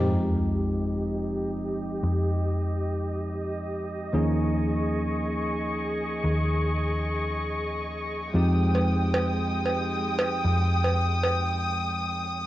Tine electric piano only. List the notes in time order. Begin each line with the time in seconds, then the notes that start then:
Already playing: F3 G#3 C4 D#4 G4
4.13 F3 A#3 C#4 D#4 G#4
8.34 F3 G#3 C4 D#4 G4